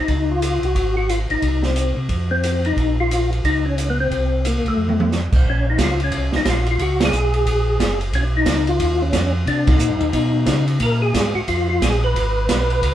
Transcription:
0.00 tonewheel organ D#4
0.08 tonewheel organ C#2, kick, ride
0.31 tonewheel organ F4
0.42 hi-hat pedal, ride
0.63 tonewheel organ C2 F#4, ride
0.75 tonewheel organ G#1, kick, ride
0.97 tonewheel organ F#4
1.09 tonewheel organ F4, hi-hat pedal, ride
1.30 tonewheel organ G#1 D#4, ride
1.42 tonewheel organ C2, kick, ride
1.63 tonewheel organ C4, snare
1.76 hi-hat pedal, ride
1.97 tonewheel organ C3
2.09 tonewheel organ F2, kick, ride
2.31 tonewheel organ C4
2.44 hi-hat pedal, ride
2.65 tonewheel organ D#4, ride
2.77 tonewheel organ A#1, kick, ride
3.00 tonewheel organ F4
3.11 hi-hat pedal, ride
3.33 ride
3.44 tonewheel organ C#2 D#4, kick, ride
3.66 tonewheel organ C#4
3.78 hi-hat pedal, ride
3.90 tonewheel organ B3
4.00 tonewheel organ C4
4.11 tonewheel organ C2, kick, ride
4.45 tonewheel organ A#3, hi-hat pedal, ride
4.64 tonewheel organ C2 A3, ride
4.77 tonewheel organ F2
4.89 high tom
5.00 high tom
5.12 snare, hi-hat pedal
5.32 tonewheel organ B1, kick, crash
5.45 tonewheel organ A#1, kick
5.50 tonewheel organ C#4
5.70 tonewheel organ D#4
5.78 tonewheel organ C#2, kick, snare, hi-hat pedal, ride
5.83 tonewheel organ F4
6.00 tonewheel organ C#4, ride
6.11 tonewheel organ C2, kick, ride
6.32 tonewheel organ C2, snare
6.36 tonewheel organ D#4
6.45 tonewheel organ A#1, kick, snare, hi-hat pedal, ride
6.50 tonewheel organ F4
6.66 ride
6.71 tonewheel organ F4
6.79 tonewheel organ C#2 F#4, kick, ride
7.00 snare, ride
7.05 tonewheel organ G#4
7.12 tonewheel organ B1, hi-hat pedal
7.34 ride
7.46 tonewheel organ A#1, kick, ride
7.79 tonewheel organ F#1, kick, snare, hi-hat pedal, ride
8.01 ride
8.13 tonewheel organ B1 C#4, kick, ride
8.37 tonewheel organ D#4
8.46 tonewheel organ C#2, kick, snare, hi-hat pedal, ride
8.67 tonewheel organ F4, ride
8.79 tonewheel organ D#2, kick, ride
9.02 tonewheel organ C#4
9.12 tonewheel organ F2, kick, snare, hi-hat pedal, ride
9.46 tonewheel organ C3 D4, kick, ride
9.67 tonewheel organ D#4, kick, ride
9.79 tonewheel organ A#2, hi-hat pedal
9.90 tonewheel organ G2
10.01 tonewheel organ D#2, ride
10.13 tonewheel organ B2, kick, ride
10.46 tonewheel organ C#3, kick, snare, hi-hat pedal, ride
10.68 ride
10.80 tonewheel organ A#2 A#4, kick, ride
11.02 tonewheel organ G#4
11.14 tonewheel organ G#2, kick, snare, hi-hat pedal, ride
11.35 tonewheel organ G#2 F#4
11.48 tonewheel organ F2 F4, kick, ride
11.69 tonewheel organ F4
11.81 tonewheel organ A#1 G#4, kick, snare, hi-hat pedal, ride
12.04 tonewheel organ B4
12.14 tonewheel organ G#1, kick, ride
12.48 tonewheel organ B1, kick, snare, hi-hat pedal, ride
12.70 ride
12.82 tonewheel organ C#2, kick, ride

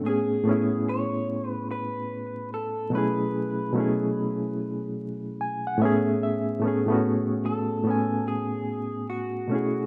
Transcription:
0.02 reed electric piano A2 A3
0.06 reed electric piano B3 C#4 G#4, clean electric guitar G#4
0.43 reed electric piano A2 A3
0.47 reed electric piano B3 C#4 E4
0.89 clean electric guitar C#5
1.50 clean electric guitar B4
1.71 clean electric guitar B4
2.54 clean electric guitar A4
2.90 reed electric piano B2 F#3 A3
2.95 reed electric piano C#4 E4 G#4, clean electric guitar B4
3.72 reed electric piano B2 F#3 A3
3.77 reed electric piano C#4 E4 G#4
5.41 reed electric piano G#5
5.67 reed electric piano F#5
5.78 reed electric piano A2 A3 B3
5.82 reed electric piano C#4 G#4 E5
6.23 reed electric piano E5
6.60 reed electric piano A2 A3 B3
6.66 reed electric piano C#4 G#4
6.86 reed electric piano A2 A3 B3
6.92 reed electric piano C#4 F#4
7.46 clean electric guitar A4
7.83 reed electric piano A2 A3 B3
7.89 reed electric piano C#4 G#5
8.28 clean electric guitar G#4
9.10 clean electric guitar F#4
9.47 reed electric piano B2 A3 C#4
9.53 reed electric piano E4 G#4

